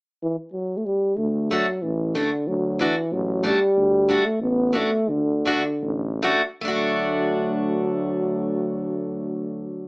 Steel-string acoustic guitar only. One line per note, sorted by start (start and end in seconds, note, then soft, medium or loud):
1.51 1.66 A3 medium
1.51 1.66 D4 soft
1.51 1.66 F#4 soft
2.15 2.30 A3 soft
2.15 2.30 D4 soft
2.15 2.30 F#4 soft
2.79 2.94 A3 soft
2.79 2.95 D4 soft
2.79 2.95 F#4 medium
3.43 3.58 A3 soft
3.43 3.59 D4 soft
3.43 3.59 F#4 soft
4.09 4.23 A3 soft
4.09 4.23 D4 soft
4.09 4.24 F#4 medium
4.73 4.89 A3 soft
4.73 4.90 D4 soft
4.73 4.90 F#4 soft
5.46 5.62 A3 soft
5.46 5.62 D4 medium
5.46 5.63 F#4 medium
6.23 6.41 A3 medium
6.23 6.41 D4 soft
6.23 6.41 F#4 medium
6.61 9.88 A3 medium
6.61 9.88 D4 medium
6.68 9.88 F#4 medium